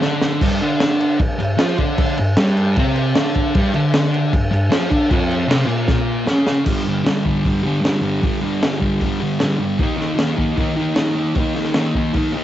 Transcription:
0.01 distorted electric guitar D3 D4, snare
0.21 snare
0.41 distorted electric guitar G2 G3, kick, crash
0.62 distorted electric guitar D3 D4, crash
0.80 snare, crash
1.01 crash
1.19 distorted electric guitar G2, kick, crash
1.39 distorted electric guitar G2, crash
1.57 distorted electric guitar F3 F4, snare, crash
1.78 distorted electric guitar D3 D4, kick, crash
1.98 kick, crash
2.17 distorted electric guitar G2, crash
2.37 distorted electric guitar G2 G3, snare, crash
2.57 crash
2.76 distorted electric guitar C3 C4, kick, crash
2.96 crash
3.15 distorted electric guitar D3 D4, snare, crash
3.35 kick, crash
3.54 distorted electric guitar G2 G3, kick, crash
3.73 distorted electric guitar D3 D4, crash
3.94 snare, crash
4.14 crash
4.33 distorted electric guitar G2, kick, crash
4.51 distorted electric guitar G2, crash
4.70 distorted electric guitar F3 F4, snare, crash
4.90 distorted electric guitar D3 D4, kick, crash
5.09 distorted electric guitar F2 F3, kick, crash
5.31 crash
5.47 distorted electric guitar C3 C4, snare, crash
5.66 distorted electric guitar A#2 A#3, crash
5.88 kick, snare
6.26 distorted electric guitar C#3 C#4, snare
6.47 snare
6.64 distorted electric guitar G2 D3 G3, kick, crash
6.84 distorted electric guitar G3
6.89 distorted electric guitar D3
7.04 distorted electric guitar G2 D3, snare, open hi-hat
7.09 distorted electric guitar G3
7.25 distorted electric guitar D3 G3, kick
7.29 distorted electric guitar G2
7.44 distorted electric guitar G2 D3, kick, open hi-hat
7.48 distorted electric guitar G3
7.63 distorted electric guitar D3 G3
7.67 distorted electric guitar G2
7.81 distorted electric guitar G2 D3, snare, open hi-hat
7.86 distorted electric guitar G3
8.02 distorted electric guitar D3 G3
8.22 distorted electric guitar G2 D3 G3, kick, open hi-hat
8.41 distorted electric guitar G3
8.46 distorted electric guitar D3
8.62 distorted electric guitar G2 D3, snare, open hi-hat
8.66 distorted electric guitar G3
8.80 distorted electric guitar D3 G3, kick
8.85 distorted electric guitar G2
9.01 distorted electric guitar G2 D3, kick, open hi-hat
9.05 distorted electric guitar G3
9.20 distorted electric guitar G2 D3 G3
9.39 distorted electric guitar G2 D3, snare, open hi-hat
9.44 distorted electric guitar G3
9.59 distorted electric guitar G3
9.64 distorted electric guitar D3
9.79 distorted electric guitar D#3 A#3 D#4, kick, open hi-hat
9.97 distorted electric guitar A#3 D#4, snare
10.15 distorted electric guitar D#3 A#3, snare, open hi-hat
10.20 distorted electric guitar D#4
10.36 distorted electric guitar D#3 A#3 D#4, kick
10.56 distorted electric guitar D#3 A#3 D#4, kick, open hi-hat
10.76 distorted electric guitar A#3 D#4
10.80 distorted electric guitar D#3
10.94 distorted electric guitar D#3 A#3, snare, open hi-hat
10.99 distorted electric guitar D#4
11.15 distorted electric guitar D#4
11.19 distorted electric guitar A#3
11.35 distorted electric guitar D#3 A#3, kick, open hi-hat
11.40 distorted electric guitar D#4
11.55 distorted electric guitar D#4, snare
11.60 distorted electric guitar A#3
11.64 snare
11.74 distorted electric guitar D#3 A#3, snare, open hi-hat
11.78 distorted electric guitar D#4
11.95 distorted electric guitar A#3 D#4, kick
11.99 distorted electric guitar D#3
12.14 distorted electric guitar D#3 A#3 D#4, kick, open hi-hat
12.33 distorted electric guitar A#3 D#4
12.37 distorted electric guitar D#3

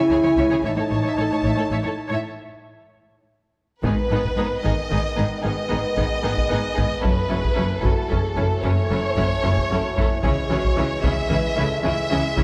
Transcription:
Already playing: french horn section E4, violin section G#5
0.10 double bass section C#2, cello section C#3, violin section G#4, viola section C#5
0.23 cello section C#3, viola section C#5, violin section C#5
0.37 double bass section C#2, cello section C#3, viola section C#5, violin section E5
0.51 cello section C#3, violin section G#4, viola section C#5
0.63 double bass section A1, cello section A2, french horn section D#4, viola section C#5, violin section E5 A5
0.76 cello section A2, violin section A4, viola section C#5
0.90 double bass section A1, cello section A2, viola section C#5, violin section C#5
1.03 cello section A2, viola section C#5, violin section E5
1.16 double bass section A1, cello section A2, violin section A4, viola section C#5
1.31 cello section A2, viola section C#5, violin section C#5
1.43 double bass section A1, cello section A2, viola section C#5, violin section E5
1.57 cello section A2, violin section A4, viola section C#5
1.71 double bass section A1, cello section A2, viola section C#5, violin section E5
1.83 cello section A2, viola section C#5
1.87 violin section A4
2.08 cello section A2, viola section C#5
2.13 violin section E5
3.82 double bass section G#1, cello section G#2, viola section D#3 B3, trombone section D#3 B3, violin section D#4 G#4 B4, taiko
4.10 double bass section G#1, cello section G#2, viola section D#3 B3, violin section D#4 G#4
4.25 taiko
4.37 double bass section G#1, cello section G#2, viola section D#3 B3, violin section D#4 G#4
4.64 double bass section G#1, cello section G#2, viola section D#3 B3, violin section D#4 G#4 D#5, taiko
4.90 double bass section G#1, cello section G#2, viola section D#3 B3, violin section D#4 G#4, taiko
5.16 double bass section G#1, cello section G#2, viola section D#3 B3, violin section D#4 G#4
5.41 double bass section G#1, cello section G#2, viola section D#3 B3, violin section D#4 G#4 D#5, french horn section G#4
5.69 double bass section G#1, cello section G#2, viola section D#3 B3, violin section D#4 G#4, french horn section B4
5.96 double bass section G#1, cello section G#2, viola section D#3 B3, violin section D#4 G#4, french horn section G#4, taiko
6.23 double bass section G#1, cello section G#2, viola section D#3 B3, violin section D#4 G#4
6.38 taiko
6.50 double bass section G#1, cello section G#2, viola section D#3 B3, violin section D#4 G#4
6.74 viola section D#3 B3, violin section D#4 G#4
6.78 double bass section G#1, cello section G#2, taiko
7.01 double bass section F#1, cello section F#2, viola section F#3 C#4, violin section E4 A4 B4, french horn section A4, taiko
7.05 trombone section E3
7.28 double bass section F#1, cello section F#2, viola section F#3 C#4, violin section E4 A4, french horn section G#4
7.45 taiko
7.54 double bass section F#1, cello section F#2, viola section F#3 C#4, violin section E4 A4, french horn section A4
7.80 double bass section F#1, viola section F#3 C#4, violin section E4 A4, french horn section F#4
7.85 cello section F#2, trombone section A3, taiko
8.08 double bass section F#1, cello section F#2, viola section F#3 C#4, violin section E4 A4, french horn section G#4, taiko
8.35 double bass section F#1, cello section F#2, viola section F#3 C#4, violin section E4 A4, french horn section F#4
8.62 double bass section F#1, cello section F#2, viola section F#3 C#4, violin section E4 A4 C#5, french horn section A4
8.90 double bass section F#1, cello section F#2, viola section F#3 C#4, violin section E4 A4
9.16 double bass section F#1, cello section F#2, viola section F#3 C#4, violin section E4 A4, taiko
9.43 double bass section F#1, cello section F#2, viola section F#3 C#4, violin section E4 A4, french horn section G#4
9.57 taiko
9.70 double bass section F#1, cello section F#2, viola section F#3 C#4, violin section E4 A4, french horn section F#4
9.97 double bass section F#1, cello section F#2, viola section F#3 C#4, french horn section E4, violin section E4 A4, taiko
10.23 double bass section C#2, cello section C#3, viola section E3 C#4, trombone section G#3, violin section E4 G#4 C#5, french horn section G#4, taiko
10.49 double bass section C#2, cello section C#3, viola section E3 C#4, violin section E4 G#4, french horn section F#4
10.64 taiko
10.76 double bass section C#2, cello section C#3, viola section E3 C#4, french horn section E4, violin section E4 G#4
11.03 double bass section C#2, cello section C#3, viola section E3 C#4, violin section E4 G#4 E5, french horn section G#4, taiko
11.30 double bass section C#2, cello section C#3, viola section E3 C#4, violin section E4 G#4, french horn section B4, taiko
11.56 double bass section C#2, cello section C#3, viola section E3 C#4, violin section E4 G#4, french horn section A4
11.83 double bass section C#2, cello section C#3, viola section E3 C#4, violin section E4 G#4 E5, french horn section G#4
12.11 double bass section C#2, cello section C#3, viola section E3 C#4, violin section E4 G#4
12.37 double bass section C#2, cello section C#3, viola section E3 C#4, violin section E4 G#4, taiko

